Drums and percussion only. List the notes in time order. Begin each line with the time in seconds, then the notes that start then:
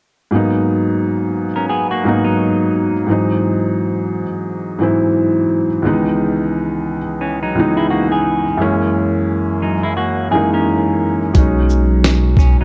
11.35 kick, closed hi-hat
11.70 shaker
12.04 snare, closed hi-hat
12.37 kick, snare, shaker